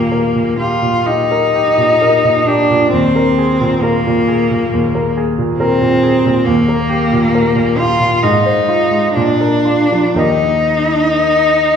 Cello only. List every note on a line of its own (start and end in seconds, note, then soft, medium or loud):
0.00 0.59 A#3 medium
0.59 1.08 F4 soft
1.06 2.48 D#4 medium
2.47 2.92 D4 medium
2.93 3.83 C4 medium
3.82 5.16 A#3 medium
5.59 6.47 C4 medium
6.45 7.79 A#3 medium
7.78 8.24 F4 medium
8.23 9.14 D#4 medium
9.15 10.20 D4 medium
10.19 11.76 D#4 medium